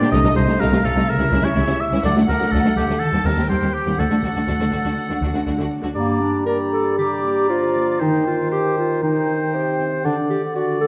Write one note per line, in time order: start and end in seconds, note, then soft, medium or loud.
0.00 0.15 A#2 soft
0.00 0.05 A#2 soft
0.00 0.06 D3 soft
0.00 0.15 A#3 soft
0.00 0.06 A#3 soft
0.00 0.15 D4 soft
0.00 0.08 D4 soft
0.00 0.15 G4 soft
0.00 0.07 G4 soft
0.00 0.11 D5 medium
0.00 0.12 G5 soft
0.12 0.17 C2 medium
0.12 0.18 C2 medium
0.12 1.10 C3 soft
0.12 0.18 C3 medium
0.12 0.18 A3 medium
0.12 0.18 D#4 medium
0.12 0.60 D#5 medium
0.12 0.35 D#5 medium
0.24 0.29 C2 soft
0.24 0.29 C3 soft
0.24 0.29 A3 soft
0.24 0.30 A3 soft
0.24 0.30 D#4 soft
0.35 0.40 C2 soft
0.35 0.42 C2 soft
0.35 0.40 C3 soft
0.35 0.40 A3 soft
0.35 0.41 A3 soft
0.35 0.84 C4 soft
0.35 0.41 D#4 soft
0.35 0.62 C5 medium
0.47 0.52 C2 soft
0.47 0.52 C3 soft
0.47 0.52 A3 soft
0.47 0.54 A3 soft
0.47 0.54 D#4 soft
0.59 0.64 C2 medium
0.59 0.66 C2 medium
0.59 0.64 C3 medium
0.59 0.64 A3 medium
0.59 0.65 A3 medium
0.59 0.65 D#4 medium
0.59 1.10 A4 soft
0.59 0.86 A#4 medium
0.59 1.07 F5 soft
0.72 0.77 C2 soft
0.72 0.77 C3 soft
0.72 0.77 A3 soft
0.72 0.78 A3 soft
0.72 0.78 D#4 soft
0.83 0.88 C2 soft
0.83 0.90 C2 soft
0.83 0.89 C3 soft
0.83 0.89 A3 soft
0.83 1.10 C4 soft
0.83 0.89 D#4 soft
0.83 1.11 A4 medium
0.95 1.00 C2 medium
0.95 1.00 C3 medium
0.95 1.01 A3 medium
0.95 1.02 A3 soft
0.95 1.02 D#4 soft
1.08 2.06 C#3 soft
1.08 1.46 A#4 medium
1.08 2.05 E5 medium
1.19 1.24 C#2 soft
1.19 1.25 E3 soft
1.19 1.25 G3 soft
1.19 1.25 C#4 soft
1.19 1.24 E4 soft
1.31 1.36 C#2 medium
1.31 1.37 C#2 medium
1.31 1.36 E3 medium
1.31 1.36 G3 medium
1.31 2.06 A#3 soft
1.31 1.37 C#4 medium
1.31 1.37 E4 medium
1.43 1.48 C#2 soft
1.43 1.49 E3 soft
1.43 1.49 G3 soft
1.43 1.48 C#4 soft
1.43 1.48 E4 soft
1.43 1.82 C#5 medium
1.55 1.60 C#2 soft
1.55 1.61 C#2 soft
1.55 1.61 E3 soft
1.55 1.61 G3 soft
1.55 1.61 C#4 soft
1.55 1.61 E4 soft
1.55 2.07 E4 soft
1.67 1.72 C#2 medium
1.67 1.72 E3 medium
1.67 1.72 G3 medium
1.67 1.73 C#4 medium
1.67 1.73 E4 medium
1.81 2.07 G4 soft
1.81 2.05 E5 medium
1.92 1.97 C#2 soft
1.92 1.97 E3 soft
1.92 1.97 G3 soft
1.92 1.98 C#4 soft
1.92 1.97 E4 soft
2.03 2.09 D2 medium
2.03 3.02 D3 soft
2.03 2.08 F#3 medium
2.03 2.08 A3 medium
2.03 2.09 A3 medium
2.03 2.08 D4 medium
2.03 2.16 D5 medium
2.03 3.00 F#5 medium
2.15 2.21 D2 soft
2.15 2.21 F#3 soft
2.15 2.20 A3 soft
2.15 2.22 A3 soft
2.15 2.22 D4 soft
2.27 2.33 D2 soft
2.27 2.34 D2 soft
2.27 2.32 F#3 soft
2.27 2.32 A3 soft
2.27 3.02 A3 soft
2.27 2.34 A3 soft
2.27 2.34 D4 soft
2.27 2.53 A#4 medium
2.39 2.45 D2 soft
2.39 2.44 F#3 soft
2.39 2.44 A3 soft
2.39 2.46 A3 soft
2.39 2.47 D4 soft
2.51 2.57 D2 medium
2.51 2.56 F#3 soft
2.51 2.56 A3 soft
2.51 2.59 A3 medium
2.51 2.59 D4 soft
2.51 3.02 F#4 soft
2.51 2.76 A4 soft
2.64 2.69 D2 soft
2.64 2.70 F#3 soft
2.64 2.69 A3 soft
2.64 2.70 A3 soft
2.64 2.70 D4 soft
2.76 2.81 D2 soft
2.76 2.81 F#3 soft
2.76 2.81 A3 soft
2.76 2.82 A3 soft
2.76 2.82 D4 soft
2.76 3.01 G4 medium
2.76 3.02 A4 soft
2.88 2.93 D2 soft
2.88 2.93 F#3 soft
2.88 2.93 A3 soft
2.88 2.94 A3 soft
2.88 2.95 D4 soft
2.99 3.99 D#3 soft
2.99 3.27 A4 medium
2.99 3.49 A5 medium
3.12 3.17 D#2 soft
3.12 3.17 G3 soft
3.12 3.19 C4 soft
3.12 3.19 G4 soft
3.24 3.29 D#2 soft
3.24 3.29 G3 soft
3.24 4.00 G3 soft
3.24 3.30 C4 soft
3.24 3.30 G4 soft
3.24 3.49 A#4 soft
3.37 3.42 D#2 soft
3.37 3.42 G3 soft
3.37 3.43 C4 soft
3.37 3.43 G4 soft
3.49 3.54 D#2 soft
3.49 3.54 G3 soft
3.49 3.55 C4 soft
3.49 4.00 G4 soft
3.49 3.55 G4 soft
3.49 3.75 C5 soft
3.49 3.98 G5 soft
3.62 3.67 D#2 soft
3.62 3.67 G3 soft
3.62 3.68 C4 soft
3.62 3.67 G4 soft
3.74 4.00 G4 soft
3.74 4.00 C5 soft
3.86 3.91 D#2 soft
3.86 3.91 G3 soft
3.86 3.91 C4 soft
3.86 3.92 G4 soft
3.98 4.03 D2 soft
3.98 4.03 D3 soft
3.98 5.97 D3 soft
3.98 4.03 A3 soft
3.98 4.04 D4 soft
3.98 4.04 F#4 soft
3.98 5.46 A4 medium
3.98 5.66 F#5 soft
4.10 4.15 D2 soft
4.10 4.16 D3 soft
4.10 4.15 A3 soft
4.10 4.16 D4 soft
4.10 4.16 F#4 soft
4.23 4.28 D2 soft
4.23 4.28 D3 soft
4.23 5.21 A3 soft
4.23 4.28 A3 soft
4.23 4.29 D4 soft
4.23 4.29 F#4 soft
4.35 4.40 D2 soft
4.35 4.41 D3 soft
4.35 4.41 A3 soft
4.35 4.41 D4 soft
4.35 4.40 F#4 soft
4.47 4.53 D2 soft
4.47 4.53 D3 soft
4.47 4.53 A3 soft
4.47 4.52 D4 soft
4.47 5.45 F#4 soft
4.47 4.53 F#4 soft
4.60 4.65 D2 soft
4.60 4.65 D3 soft
4.60 4.66 A3 soft
4.60 4.65 D4 soft
4.60 4.65 F#4 soft
4.72 4.77 D2 soft
4.72 4.78 D2 soft
4.72 4.78 D3 soft
4.72 4.78 A3 soft
4.72 4.77 D4 soft
4.72 4.77 F#4 soft
4.72 5.69 D5 soft
4.85 4.89 D2 soft
4.85 4.90 D3 soft
4.85 4.90 A3 soft
4.85 4.90 D4 soft
4.85 4.90 F#4 soft
4.97 8.03 D4 soft
5.09 5.14 D2 soft
5.09 5.14 D3 soft
5.09 5.14 A3 soft
5.09 5.15 D4 soft
5.09 5.16 F#4 soft
5.21 5.26 D2 soft
5.21 5.27 D2 soft
5.21 5.26 D3 soft
5.21 5.26 A3 soft
5.21 5.97 A3 soft
5.21 5.28 D4 soft
5.21 5.28 F#4 soft
5.34 5.39 D2 soft
5.34 5.39 D3 soft
5.34 5.39 A3 soft
5.34 5.40 D4 soft
5.34 5.40 F#4 soft
5.46 5.51 D2 soft
5.46 5.52 D2 soft
5.46 5.51 D3 soft
5.46 5.51 A3 soft
5.46 5.52 D4 soft
5.46 5.97 F#4 soft
5.46 5.52 F#4 soft
5.57 5.64 D2 soft
5.57 5.62 D3 soft
5.57 5.63 A3 soft
5.57 5.65 D4 soft
5.57 5.64 F#4 soft
5.70 8.03 D5 soft
5.82 5.88 D2 soft
5.82 5.87 D3 soft
5.82 5.87 A3 soft
5.82 5.89 D4 soft
5.82 5.89 F#4 soft
5.94 8.03 G2 soft
5.94 7.51 G3 soft
5.94 6.22 A#3 medium
5.94 6.42 D5 soft
5.94 6.43 A#5 soft
6.21 6.71 A#3 soft
6.21 6.45 D4 medium
6.46 7.48 G4 soft
6.46 6.57 A#4 medium
6.46 6.97 D5 soft
6.46 6.97 A#5 soft
6.72 7.23 A#3 soft
6.72 6.97 A4 medium
6.98 8.03 D3 soft
6.98 7.48 G4 medium
6.98 8.01 D5 soft
6.98 7.99 A#5 soft
7.24 7.74 A#3 soft
7.49 8.00 F3 soft
7.49 8.03 F4 medium
7.49 8.50 G4 soft
7.75 8.03 A#3 soft
8.00 9.55 D#3 medium
8.00 9.00 D#3 soft
8.00 8.27 D#4 medium
8.00 8.50 C5 soft
8.00 8.50 G5 soft
8.27 8.54 F4 medium
8.50 9.52 G4 soft
8.50 8.77 G4 medium
8.50 9.01 C5 soft
8.50 9.01 G5 soft
8.77 9.78 C4 soft
8.77 9.02 F4 medium
9.02 10.07 D#3 soft
9.02 9.78 D#4 medium
9.02 10.07 C5 soft
9.02 10.02 G5 soft
9.28 10.07 D#4 soft
9.53 10.04 C3 soft
9.53 10.07 G4 soft
9.79 10.07 C4 soft
10.04 10.87 D3 medium
10.04 10.87 D3 soft
10.04 10.16 D4 medium
10.04 10.55 D5 soft
10.04 10.55 F#5 soft
10.30 10.79 A3 soft
10.30 10.42 G4 medium
10.55 10.80 F#4 medium
10.55 10.87 F#4 soft
10.55 10.87 D5 soft
10.55 10.87 F#5 medium
10.81 10.87 A3 soft
10.81 10.87 A4 medium